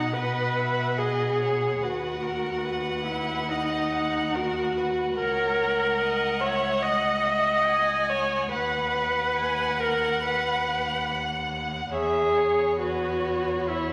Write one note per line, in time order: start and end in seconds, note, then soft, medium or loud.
0.00 1.79 B2 soft
0.00 0.15 D#4 medium
0.00 0.17 F#5 soft
0.00 1.79 F#5 soft
0.13 1.00 B4 medium
0.13 0.58 D#5 soft
0.57 1.01 E5 soft
0.98 1.85 G#4 medium
0.98 1.41 D#5 soft
1.41 1.83 C#5 soft
1.82 5.14 D#2 soft
1.82 3.06 F#4 medium
1.82 2.23 B4 soft
1.82 5.13 F#5 soft
2.22 2.66 A#4 soft
2.64 3.50 B4 soft
3.07 3.52 E4 medium
3.49 4.37 D#4 medium
3.49 3.93 D#5 medium
3.91 4.37 F#5 soft
4.35 5.18 F#4 medium
4.35 4.78 A#4 medium
4.76 5.19 B4 soft
5.17 8.48 C#2 medium
5.17 6.43 A#4 medium
5.17 6.00 C#5 medium
5.17 8.48 F#5 soft
6.01 6.43 D#5 medium
6.41 6.84 C#5 medium
6.41 6.84 E5 medium
6.83 8.11 D#5 medium
6.83 7.25 F#5 medium
7.24 7.67 E5 medium
7.66 8.53 G#5 medium
8.10 8.52 C#5 medium
8.51 11.89 D#2 medium
8.51 9.81 B4 medium
8.51 11.89 F#5 medium
8.51 9.37 F#5 medium
9.35 9.79 G#5 medium
9.78 10.23 A#4 medium
9.78 11.92 F#5 medium
10.24 11.08 B4 medium
11.93 13.93 E2 medium
11.93 12.76 G#4 medium
11.93 13.93 C#5 soft
11.93 12.38 E5 medium
12.37 12.81 C#5 medium
12.80 13.71 F#4 medium
12.80 13.71 B4 soft
13.69 13.93 E4 medium
13.69 13.93 C#5 soft